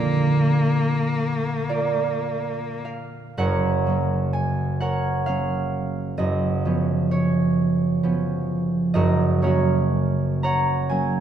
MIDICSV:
0, 0, Header, 1, 3, 480
1, 0, Start_track
1, 0, Key_signature, -2, "major"
1, 0, Tempo, 1239669
1, 886, Tempo, 1096892
1, 1365, Time_signature, 6, 3, 24, 8
1, 1365, Key_signature, 6, "major"
1, 1366, Tempo, 969305
1, 1846, Tempo, 920245
1, 4246, Tempo, 991736
1, 4726, Tempo, 944882
1, 5363, End_track
2, 0, Start_track
2, 0, Title_t, "Harp"
2, 0, Program_c, 0, 46
2, 0, Note_on_c, 0, 46, 58
2, 0, Note_on_c, 0, 50, 45
2, 0, Note_on_c, 0, 58, 45
2, 0, Note_on_c, 0, 62, 48
2, 656, Note_on_c, 0, 74, 84
2, 658, Note_on_c, 0, 65, 60
2, 660, Note_on_c, 0, 70, 60
2, 1131, Note_on_c, 0, 77, 79
2, 1360, Note_off_c, 0, 70, 0
2, 1361, Note_on_c, 0, 30, 66
2, 1364, Note_on_c, 0, 78, 101
2, 1365, Note_on_c, 0, 70, 74
2, 1367, Note_on_c, 0, 42, 70
2, 1369, Note_off_c, 0, 46, 0
2, 1371, Note_off_c, 0, 50, 0
2, 1371, Note_on_c, 0, 73, 81
2, 1378, Note_off_c, 0, 62, 0
2, 1381, Note_off_c, 0, 77, 0
2, 1383, Note_off_c, 0, 74, 0
2, 1384, Note_off_c, 0, 65, 0
2, 1510, Note_off_c, 0, 58, 0
2, 1604, Note_on_c, 0, 54, 54
2, 1611, Note_on_c, 0, 58, 51
2, 1619, Note_on_c, 0, 61, 58
2, 1835, Note_on_c, 0, 80, 94
2, 2074, Note_off_c, 0, 78, 0
2, 2080, Note_off_c, 0, 70, 0
2, 2081, Note_off_c, 0, 73, 0
2, 2081, Note_on_c, 0, 78, 89
2, 2085, Note_on_c, 0, 70, 74
2, 2088, Note_on_c, 0, 73, 72
2, 2249, Note_off_c, 0, 80, 0
2, 2319, Note_off_c, 0, 54, 0
2, 2319, Note_on_c, 0, 77, 96
2, 2322, Note_off_c, 0, 58, 0
2, 2325, Note_on_c, 0, 54, 47
2, 2326, Note_off_c, 0, 61, 0
2, 2328, Note_on_c, 0, 58, 50
2, 2332, Note_on_c, 0, 61, 53
2, 2791, Note_off_c, 0, 30, 0
2, 2795, Note_on_c, 0, 30, 66
2, 2797, Note_off_c, 0, 42, 0
2, 2798, Note_on_c, 0, 75, 95
2, 2803, Note_on_c, 0, 42, 68
2, 2817, Note_off_c, 0, 78, 0
2, 2820, Note_off_c, 0, 70, 0
2, 2821, Note_off_c, 0, 54, 0
2, 2823, Note_off_c, 0, 58, 0
2, 3044, Note_off_c, 0, 61, 0
2, 3044, Note_on_c, 0, 53, 55
2, 3049, Note_on_c, 0, 59, 55
2, 3051, Note_on_c, 0, 61, 58
2, 3140, Note_off_c, 0, 77, 0
2, 3278, Note_off_c, 0, 73, 0
2, 3285, Note_on_c, 0, 73, 79
2, 3622, Note_off_c, 0, 75, 0
2, 3758, Note_off_c, 0, 59, 0
2, 3759, Note_off_c, 0, 53, 0
2, 3765, Note_off_c, 0, 61, 0
2, 3765, Note_on_c, 0, 53, 53
2, 3765, Note_on_c, 0, 59, 50
2, 3771, Note_on_c, 0, 61, 57
2, 4236, Note_off_c, 0, 30, 0
2, 4237, Note_on_c, 0, 75, 104
2, 4241, Note_off_c, 0, 42, 0
2, 4241, Note_on_c, 0, 30, 70
2, 4243, Note_on_c, 0, 70, 78
2, 4245, Note_on_c, 0, 66, 77
2, 4247, Note_on_c, 0, 42, 70
2, 4263, Note_off_c, 0, 59, 0
2, 4264, Note_off_c, 0, 53, 0
2, 4468, Note_off_c, 0, 73, 0
2, 4470, Note_on_c, 0, 58, 53
2, 4473, Note_off_c, 0, 70, 0
2, 4473, Note_on_c, 0, 73, 82
2, 4475, Note_off_c, 0, 66, 0
2, 4476, Note_off_c, 0, 61, 0
2, 4478, Note_on_c, 0, 54, 55
2, 4480, Note_on_c, 0, 70, 66
2, 4482, Note_on_c, 0, 61, 63
2, 4492, Note_on_c, 0, 66, 64
2, 4647, Note_off_c, 0, 75, 0
2, 4970, Note_off_c, 0, 73, 0
2, 4972, Note_on_c, 0, 82, 101
2, 4976, Note_on_c, 0, 73, 76
2, 4979, Note_on_c, 0, 78, 75
2, 5207, Note_on_c, 0, 80, 99
2, 5208, Note_off_c, 0, 54, 0
2, 5212, Note_off_c, 0, 58, 0
2, 5212, Note_off_c, 0, 61, 0
2, 5214, Note_on_c, 0, 54, 54
2, 5216, Note_on_c, 0, 58, 56
2, 5220, Note_on_c, 0, 61, 58
2, 5363, Note_off_c, 0, 30, 0
2, 5363, Note_off_c, 0, 42, 0
2, 5363, Note_off_c, 0, 54, 0
2, 5363, Note_off_c, 0, 58, 0
2, 5363, Note_off_c, 0, 61, 0
2, 5363, Note_off_c, 0, 66, 0
2, 5363, Note_off_c, 0, 70, 0
2, 5363, Note_off_c, 0, 73, 0
2, 5363, Note_off_c, 0, 78, 0
2, 5363, Note_off_c, 0, 80, 0
2, 5363, Note_off_c, 0, 82, 0
2, 5363, End_track
3, 0, Start_track
3, 0, Title_t, "Cello"
3, 0, Program_c, 1, 42
3, 0, Note_on_c, 1, 58, 76
3, 1114, Note_off_c, 1, 58, 0
3, 5363, End_track
0, 0, End_of_file